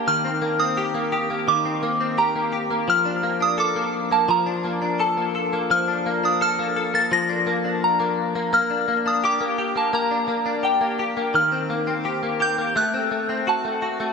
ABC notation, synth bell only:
X:1
M:4/4
L:1/16
Q:1/4=85
K:Bb
V:1 name="Synth bell"
f'3 e'4- e' d'4 b4 | f'3 e' d'3 a b4 a4 | f'3 e' f'3 a' b'4 b4 | f'3 e' d'3 a b4 g4 |
f'4 z2 g'2 ^f'4 a4 |]